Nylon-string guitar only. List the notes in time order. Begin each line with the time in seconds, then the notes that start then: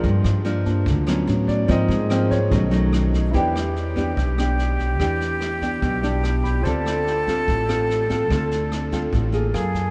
Already playing: F3 A#3 D4
0.04 G2
0.45 F3 A#3 D4
0.86 D3
1.07 F#3 B3 C#4
1.68 G#2 F3 A#3 C4
2.10 F3 A#3 C4
2.51 B2 F#3 A3 D#4
2.71 F#3 A3 D#4
3.33 E3 B3 D4 G4
3.96 B3 D4 G4
4.16 B2
4.38 B3 D4 G4
5.00 E3 B3 D4 G4
5.62 B3 D4 G4
5.82 B2
6.03 B3 D4 G4
6.65 D3 C4 F4 A4
7.27 C4 F4 A4
7.47 A2
7.69 C4 F4 A4
8.10 C4 F4 A4
8.30 D3 C4 F4 A4
8.92 C4 F4 A4
9.13 A2
9.32 A#3 F4 G#4